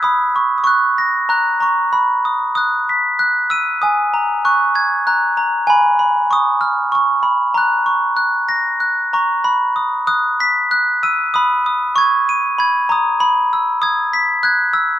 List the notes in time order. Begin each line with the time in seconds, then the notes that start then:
0.03 B5 D#6
0.36 C#6
0.58 D#6
0.64 C#6 F#6
0.98 A#6
1.29 A#5 F#6
1.60 A#5 C#6
1.93 B5
2.25 D#6
2.55 D#6 F#6
2.89 B6
3.19 F#6
3.50 E6 D#7
3.82 G#5 D#6
4.14 A#5
4.45 C#6 F#6
4.75 G#6
5.07 A#5 F#6
5.37 A#5
5.67 G#5 B5
5.99 B5
6.31 C#6 D#6
6.61 F6
6.92 C#6
7.23 B5
7.54 A#5 F#6
7.86 C#6
8.17 F#6
8.49 A#6
8.80 F#6
9.13 A#5 C#6
9.44 B5
9.76 D#6
10.07 D#6 F#6
10.40 B6
10.71 F#6
11.03 E6 D#7
11.34 B5 D#6
11.66 D#6
11.96 C#6 G#6
12.29 D#7
12.58 B5 G#6
12.89 A#5 D#6
13.20 B5
13.53 E6
13.82 D#6 G#6
14.13 B6
14.43 F#6 G#6
14.73 E6